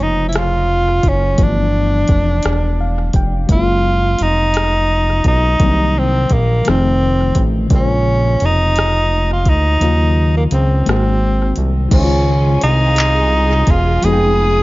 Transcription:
Already playing: fm electric piano C#3 G#3 A#3 F4 C5
0.00 analog synth bass F1, tenor saxophone D#4
0.28 tenor saxophone E4
0.33 cross-stick, closed hi-hat
0.38 tenor saxophone F4
1.03 analog synth bass F#1, kick, closed hi-hat
1.08 tenor saxophone C#4
1.35 analog synth bass G1, fm electric piano F3 A3, kick, closed hi-hat
1.40 fm electric piano B3 D4, tenor saxophone D4
1.44 fm electric piano E3
2.08 analog synth bass F1, kick, closed hi-hat
2.43 analog synth bass E1, cross-stick, closed hi-hat
2.81 fm electric piano F5
3.13 analog synth bass F1, fm electric piano G5, kick, closed hi-hat
3.47 analog synth bass F#1, fm electric piano F#3 G#3, kick, closed hi-hat
3.51 fm electric piano A#3 C#4, tenor saxophone F4
3.56 fm electric piano F4
4.19 analog synth bass F1, closed hi-hat
4.23 tenor saxophone D#4
4.54 cross-stick, closed hi-hat
5.24 analog synth bass B1, tenor saxophone D#4, kick, closed hi-hat
5.60 analog synth bass C2, fm electric piano D#3 F#3 A#3 C4, kick, closed hi-hat
5.64 fm electric piano D4
5.71 fm electric piano D#4
5.98 tenor saxophone C4
6.30 analog synth bass A#1, tenor saxophone A#3, kick, closed hi-hat
6.65 analog synth bass F1, fm electric piano D#3 F3 A3 C4 D#4, tenor saxophone C4, cross-stick, closed hi-hat
7.35 analog synth bass A1, kick, closed hi-hat
7.68 analog synth bass A#1, fm electric piano C#3 G#3, kick, closed hi-hat
7.72 fm electric piano A#3 C5, tenor saxophone C#4
7.76 fm electric piano F4
8.40 analog synth bass F1, closed hi-hat
8.45 tenor saxophone D#4
8.76 cross-stick, closed hi-hat
9.33 tenor saxophone F4
9.45 analog synth bass D2, tenor saxophone D#4, kick, closed hi-hat
9.80 analog synth bass D#2, fm electric piano C#3 D#3 F3 A#3 F4, closed hi-hat
9.87 fm electric piano F#3
10.37 tenor saxophone A#3
10.51 analog synth bass C#2, tenor saxophone C4, closed hi-hat
10.85 analog synth bass G#1, fm electric piano D#3 G#3 A#3 C4 F#4, tenor saxophone C4, closed hi-hat
10.89 cross-stick
11.56 analog synth bass C2, closed hi-hat
11.89 analog synth bass C#2, fm electric piano D#3 G#3, string section G#4 F5 G#5 C6, kick, closed hi-hat, crash
11.93 tenor saxophone C#4, fm electric piano C#4 C5
11.97 fm electric piano D#4
12.04 fm electric piano F4
12.61 analog synth bass C2, tenor saxophone D#4, closed hi-hat
12.96 clap, closed hi-hat
13.67 analog synth bass E1, tenor saxophone F4, kick, closed hi-hat
14.02 analog synth bass F1, fm electric piano F3 G#3 B3 D#4, tenor saxophone G#4, string section F5 B5 D#6, closed hi-hat
14.06 fm electric piano F#4
14.13 fm electric piano G5

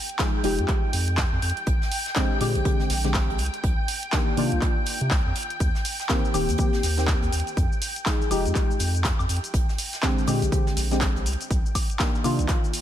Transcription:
Already playing: string machine G5
0.09 closed hi-hat
0.19 synth stab F3 G#3 D#4 G#4, kick, snare, clap, closed hi-hat
0.43 analog synth bass F1, synth stab F3 G#3 D#4 G4, closed hi-hat, open hi-hat
0.59 analog synth bass F2, closed hi-hat
0.68 kick, clap, closed hi-hat
0.93 analog synth bass F2, closed hi-hat, open hi-hat
1.08 closed hi-hat
1.17 kick, snare, clap, closed hi-hat
1.32 analog synth bass F2
1.42 analog synth bass F2, closed hi-hat, open hi-hat
1.50 closed hi-hat
1.57 closed hi-hat
1.67 analog synth bass A#1, kick, closed hi-hat
1.82 snare
1.91 closed hi-hat, open hi-hat
2.06 snare, closed hi-hat
2.15 synth stab D3 G#3 C4 G4, kick, snare, clap, closed hi-hat
2.40 analog synth bass A#2, synth stab D3 G#3 C4 G4, closed hi-hat, open hi-hat
2.55 analog synth bass A#1, closed hi-hat
2.65 synth stab D3 G#3 C4 G4, kick, closed hi-hat
2.80 snare
2.90 analog synth bass A#1, snare, closed hi-hat, open hi-hat
3.04 synth stab D3 G#3 C4 G4, snare, closed hi-hat
3.14 kick, snare, clap, closed hi-hat
3.29 analog synth bass A#1, closed hi-hat
3.38 analog synth bass C2, closed hi-hat, open hi-hat
3.46 closed hi-hat
3.54 closed hi-hat
3.64 analog synth bass C2, kick, closed hi-hat
3.88 closed hi-hat, open hi-hat
4.03 closed hi-hat
4.12 synth stab D#3 A#3 D4 G4, kick, snare, clap, closed hi-hat
4.37 analog synth bass C3, synth stab D#3 A#3 D4 F4, closed hi-hat, open hi-hat
4.52 analog synth bass C2, closed hi-hat
4.62 kick, clap, closed hi-hat
4.86 closed hi-hat, open hi-hat
5.01 analog synth bass C3, closed hi-hat
5.11 analog synth bass C2, kick, snare, clap, closed hi-hat
5.26 analog synth bass F2
5.35 closed hi-hat, open hi-hat
5.43 closed hi-hat
5.50 closed hi-hat
5.60 analog synth bass D#2, kick, closed hi-hat, shaker
5.75 snare, shaker
5.85 closed hi-hat, open hi-hat, shaker
6.00 snare, closed hi-hat, shaker
6.09 synth stab D#3 A#3 C4 G4, kick, snare, clap, closed hi-hat, shaker
6.25 shaker
6.34 analog synth bass D#1, synth stab D#3 A#3 C4 G4, closed hi-hat, open hi-hat, high woodblock, shaker
6.48 analog synth bass D#2, closed hi-hat, shaker
6.58 synth stab D#3 A#3 C4 G4, kick, closed hi-hat, shaker
6.73 snare, shaker
6.83 analog synth bass D#2, snare, closed hi-hat, open hi-hat, shaker
6.97 synth stab D#3 A#3 C4 G4, snare, closed hi-hat, shaker
7.08 kick, snare, clap, closed hi-hat, shaker
7.22 analog synth bass D#2, closed hi-hat, shaker
7.32 analog synth bass D#2, closed hi-hat, open hi-hat, shaker
7.40 closed hi-hat
7.47 closed hi-hat, shaker
7.57 analog synth bass F2, kick, closed hi-hat, shaker
7.72 shaker
7.82 closed hi-hat, open hi-hat, shaker
7.96 closed hi-hat, shaker
8.06 synth stab F3 G#3 D#4 G#4, kick, snare, clap, closed hi-hat, shaker
8.22 shaker
8.30 analog synth bass F1, synth stab F3 G#3 D#4 G4, closed hi-hat, open hi-hat, high woodblock, shaker
8.46 analog synth bass F2, closed hi-hat, shaker
8.55 kick, clap, closed hi-hat, shaker
8.71 shaker
8.79 analog synth bass F2, closed hi-hat, open hi-hat, shaker
8.95 closed hi-hat, shaker
9.04 kick, snare, clap, closed hi-hat, shaker
9.19 analog synth bass F2, high woodblock, shaker
9.29 analog synth bass F2, closed hi-hat, open hi-hat, shaker
9.37 closed hi-hat
9.44 closed hi-hat, shaker
9.54 analog synth bass A#1, kick, closed hi-hat, shaker
9.69 snare, shaker
9.78 closed hi-hat, open hi-hat, shaker
9.93 snare, closed hi-hat, shaker
10.03 synth stab D3 G#3 C4 G4, kick, snare, clap, closed hi-hat, shaker
10.18 shaker
10.27 analog synth bass A#2, synth stab D3 G#3 C4 G4, closed hi-hat, open hi-hat, high woodblock, shaker
10.42 analog synth bass A#1, closed hi-hat, shaker
10.52 synth stab D3 G#3 C4 G4, kick, closed hi-hat, shaker
10.67 snare, shaker
10.77 analog synth bass A#1, snare, closed hi-hat, open hi-hat, shaker
10.91 synth stab D3 G#3 C4 G4, snare, closed hi-hat, shaker
11.01 kick, snare, clap, closed hi-hat, shaker
11.16 analog synth bass A#1, closed hi-hat, shaker
11.26 analog synth bass C2, open hi-hat, shaker
11.33 closed hi-hat
11.41 closed hi-hat, shaker
11.51 analog synth bass C2, kick, closed hi-hat, shaker
11.66 shaker
11.75 kick, closed hi-hat, open hi-hat, high woodblock, shaker
11.90 closed hi-hat, shaker
11.99 synth stab D#3 A#3 D4 G4, kick, snare, clap, closed hi-hat, shaker
12.15 shaker
12.23 analog synth bass C3, synth stab D#3 A#3 D4 F4, closed hi-hat, open hi-hat, high woodblock, shaker
12.39 analog synth bass C2, closed hi-hat, shaker
12.48 kick, clap, closed hi-hat, shaker
12.64 shaker
12.73 closed hi-hat, open hi-hat, shaker

